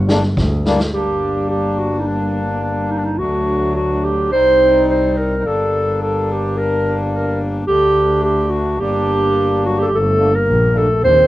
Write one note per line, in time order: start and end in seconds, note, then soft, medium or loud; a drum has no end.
0.00 0.15 G1 loud
0.07 0.22 G3 medium
0.07 0.22 A#3 medium
0.07 0.23 D4 medium
0.07 snare medium
0.23 snare soft
0.37 0.71 D2 medium
0.37 kick medium
0.37 snare medium
0.65 0.79 G3 medium
0.65 0.80 A#3 medium
0.65 0.80 D4 loud
0.65 snare medium
0.80 snare medium
0.92 3.21 G1 medium
0.92 3.15 G3 medium
0.92 3.16 A#3 medium
0.92 3.17 D4 medium
0.92 1.46 G4 medium
1.50 1.80 G4 medium
1.79 2.01 F#4 medium
1.99 2.08 D#4 medium
2.07 2.62 D4 medium
2.63 2.92 D4 medium
2.90 2.99 D#4 medium
2.97 3.05 D4 medium
3.04 3.20 D#4 medium
3.17 4.33 D2 medium
3.17 4.29 F#3 medium
3.17 4.30 A3 medium
3.17 3.75 F#4 medium
3.22 4.31 D4 medium
3.76 4.06 F#4 medium
4.04 4.31 G4 medium
4.30 5.46 C2 medium
4.30 5.41 G3 medium
4.30 5.43 C4 medium
4.30 5.44 D#4 medium
4.30 4.84 C5 loud
4.90 5.19 C5 medium
5.17 5.48 A#4 medium
5.43 7.69 G1 medium
5.43 7.63 G3 medium
5.43 7.64 A#3 soft
5.43 7.65 D4 medium
5.43 6.01 A4 loud
6.02 6.33 A4 medium
6.31 6.59 G4 medium
6.57 6.99 A#4 medium
7.15 7.40 A#4 medium
7.67 8.81 D2 medium
7.67 8.77 D3 medium
7.67 8.78 A3 medium
7.67 8.79 D4 medium
7.67 8.20 G4 loud
8.24 8.52 G4 medium
8.50 8.82 F#4 medium
8.78 9.88 G1 medium
8.78 9.87 G3 medium
8.78 9.88 A#3 medium
8.78 9.89 D4 medium
8.78 9.63 G4 loud
9.64 9.79 F#3 medium
9.64 9.81 F#4 medium
9.78 9.83 G3 medium
9.78 9.83 G4 medium
9.78 9.89 A4 medium
9.84 9.95 G3 medium
9.84 9.97 G4 medium
9.91 10.24 G1 medium
9.91 10.02 A3 medium
9.91 10.36 A4 loud
10.00 10.08 A#3 medium
10.06 10.34 A3 medium
10.18 10.32 G3 medium
10.18 10.32 A#3 medium
10.18 10.33 D4 medium
10.32 10.79 A#3 medium
10.32 10.78 A#4 medium
10.47 10.80 A#1 loud
10.73 10.87 G3 medium
10.73 10.87 A#3 medium
10.73 10.88 D4 medium
10.77 11.04 A3 medium
10.77 11.03 A4 medium
11.02 11.27 D#2 medium
11.02 11.11 C4 medium
11.02 11.27 C5 loud
11.10 11.17 D4 medium
11.16 11.27 C4 medium